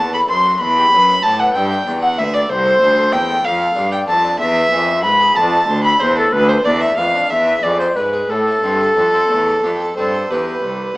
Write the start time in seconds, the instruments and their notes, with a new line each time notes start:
Already playing: flute A5, violin A5
0.00 harpsichord E2 F#4, cello E2
0.13 harpsichord A4, violin B5, flute B5
0.29 harpsichord F#2 C5, cello F#2, violin C6, flute C6
0.45 harpsichord F#4
0.60 harpsichord E2, cello E2, violin B5, flute B5
0.77 harpsichord G4
0.93 cello F#2, harpsichord F#2 B4
1.09 harpsichord E5
1.23 cello A2, harpsichord A2 G4, violin A5, flute A5
1.39 harpsichord B4, violin F#5, flute F#5
1.54 harpsichord G2 E4, cello G2, violin G5, flute G5
1.71 harpsichord E5
1.87 cello E2, harpsichord E2 D5
2.02 harpsichord E5, violin F#5, flute F#5
2.18 cello D2, harpsichord D2 B4, flute E5, violin E5
2.34 violin D5, flute D5, harpsichord E5
2.50 harpsichord C2, cello C2, violin C5, flute C5
2.66 harpsichord A4
2.82 harpsichord D2 E4, cello D2
2.97 harpsichord A4
3.12 harpsichord E2 E4, cello E2, violin G5, flute G5
3.29 harpsichord A4
3.44 cello F2, harpsichord F2, violin F5, flute F5
3.60 harpsichord A4
3.76 harpsichord G2 D4, cello G2
3.92 harpsichord D5, violin G5, flute G5
4.08 harpsichord F2 A4, cello F2, flute A5, violin A5
4.24 harpsichord D4
4.39 harpsichord E2, cello E2, flute E5, violin E5
4.56 harpsichord B4
4.72 cello F2, harpsichord F2 G#4
4.88 harpsichord E5
5.03 cello G#2, harpsichord G#2 B4, flute B5, violin B5
5.20 harpsichord G#4
5.35 cello F2, harpsichord F2, flute A5, violin A5
5.53 harpsichord A4
5.68 harpsichord D2 C5, cello D2
5.84 harpsichord A4, violin B5, flute B5
6.00 harpsichord E2 C5, cello E2, violin C5, flute C5
6.16 violin A4, harpsichord A4, flute A4
6.33 harpsichord D2, cello D2, flute B4, violin B4
6.49 harpsichord B4, flute C5, violin C5
6.65 cello E2, harpsichord E2 D4, violin D5, flute D5
6.81 harpsichord D5, violin E5, flute E5
6.97 cello F2, harpsichord F2 B4, violin F5, flute F5
7.14 harpsichord D4
7.30 cello E2, harpsichord E2, violin E5, flute E5
7.47 harpsichord B4
7.63 cello F2, harpsichord F2 G#4, flute D5, violin D5
7.79 flute C5, violin C5, harpsichord D5
7.96 cello G#2, harpsichord G#2 B4, flute B4, violin B4
8.13 harpsichord G#4
8.29 cello A2, harpsichord A2, flute A4, violin A4
8.47 harpsichord E4
8.63 cello G2, harpsichord G2 C4
8.81 harpsichord A4
8.96 cello F2, harpsichord F2 E4
9.14 harpsichord C4
9.30 cello E2, harpsichord E2 A3
9.47 harpsichord A4
9.63 cello F2, harpsichord F2 G4
9.80 harpsichord A4
9.96 cello G2, harpsichord G2 C4, flute A4, violin C5
10.14 harpsichord A4
10.29 cello E2, harpsichord E2 B3 E4, flute G4, violin B4
10.62 harpsichord C2, cello C2